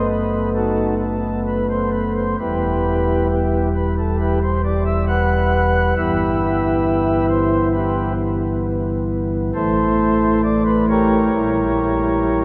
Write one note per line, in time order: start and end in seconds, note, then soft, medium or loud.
0.00 2.35 F#1 medium
0.00 2.35 F#2 medium
0.00 2.35 A3 soft
0.00 2.35 B3 soft
0.10 0.49 B4 medium
0.56 0.94 D#4 medium
0.56 0.94 F#4 medium
0.56 0.95 A4 loud
1.01 1.40 A4 medium
1.47 1.66 B4 loud
1.70 1.89 C5 medium
1.93 2.12 B4 loud
2.17 2.36 C5 medium
2.39 5.94 E1 medium
2.39 5.93 E2 medium
2.39 5.93 G3 soft
2.39 3.28 B3 medium
2.39 3.28 E4 medium
2.39 3.28 G4 medium
2.39 3.28 B4 loud
3.30 3.69 B3 medium
3.30 3.69 E4 medium
3.30 3.69 G4 loud
3.75 3.94 B4 loud
3.98 4.17 A4 medium
4.20 4.39 E4 medium
4.20 4.39 G4 medium
4.20 4.39 B4 loud
4.43 4.61 C5 loud
4.64 4.83 D5 loud
4.86 5.05 E5 loud
5.08 5.94 B4 loud
5.08 5.94 F#5 loud
5.97 9.51 G1 medium
5.97 9.51 G2 medium
5.97 9.51 E3 medium
5.97 9.51 B3 medium
5.97 7.72 E4 medium
5.97 7.26 G4 medium
5.97 7.26 B4 medium
5.97 7.26 E5 medium
7.29 7.68 C5 loud
7.74 8.13 E4 medium
7.74 8.13 G4 medium
7.74 8.13 B4 medium
9.55 11.30 A1 medium
9.55 11.30 A2 medium
9.55 11.30 E3 medium
9.55 11.30 A3 medium
9.55 10.41 E4 medium
9.55 10.41 A4 medium
9.55 10.41 C5 loud
10.43 10.63 D5 loud
10.66 10.85 B4 loud
10.89 12.45 G4 medium
10.89 12.45 A#4 medium
10.89 12.45 C#5 loud
11.34 12.45 A#1 medium
11.34 12.45 A#2 medium
11.34 12.45 E3 medium
11.34 12.45 G3 medium
11.34 12.45 E4 medium